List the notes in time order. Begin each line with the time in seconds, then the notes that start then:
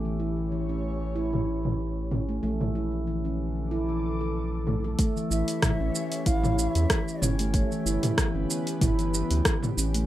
Already playing: A1 E3 G4
0.00 A3
0.05 E3
0.20 E4
0.25 C#5
0.50 E3 C#4
0.69 C#4
1.16 E4
1.33 E3, mid tom
1.65 mid tom
2.11 C#4, mid tom
2.29 A3
2.43 A#1 A3
2.61 E3, mid tom
2.69 D3
2.75 E4
3.07 E3
3.25 C#4 A4
3.59 D6
3.71 E4
3.89 E3
4.21 A4
4.67 A3, mid tom
4.84 A4
4.98 E3 A3, kick, open hi-hat, shaker
5.10 A3
5.16 E3, shaker
5.30 A1 E4 C#5 E5, shaker
5.37 G4
5.42 C#4
5.48 open hi-hat, shaker
5.62 E3, kick, cross-stick, mid tom, open hi-hat, shaker
5.80 A1 C#4
5.95 shaker
6.12 open hi-hat, shaker
6.26 A1 E4 F5, kick, open hi-hat, shaker
6.44 E3, mid tom, shaker
6.58 E5, shaker
6.75 E2, open hi-hat, shaker
6.90 kick, cross-stick, open hi-hat, shaker
7.08 shaker
7.22 G1 C#4 C#5, mid tom, shaker
7.39 A3, open hi-hat, shaker
7.54 A3, kick, open hi-hat, shaker
7.71 E3 B4, shaker
7.82 G1 B3
7.86 D3 E4, shaker
8.03 mid tom, open hi-hat, shaker
8.18 E3, kick, cross-stick, open hi-hat, shaker
8.35 G1 C#4
8.50 shaker
8.67 open hi-hat, shaker
8.81 G1 E4, kick, mid tom, open hi-hat, shaker
8.99 E3, open hi-hat, shaker
9.14 shaker
9.31 D2, open hi-hat, shaker
9.45 kick, cross-stick, open hi-hat, shaker
9.63 mid tom, shaker
9.77 A1 C#4, shaker
9.94 A3, open hi-hat, shaker